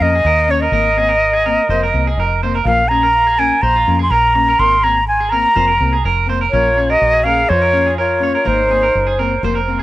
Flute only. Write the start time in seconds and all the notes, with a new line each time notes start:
0.02 D#5
0.51 C#5
0.61 D#5
2.65 F5
2.88 A#5
3.39 G#5
3.62 A#5
4.03 C6
4.11 A#5
4.59 C6
4.84 A#5
5.08 G#5
5.30 A#5
6.50 C#5
6.90 D#5
7.24 F5
7.49 C#5
7.98 C#5
8.47 C5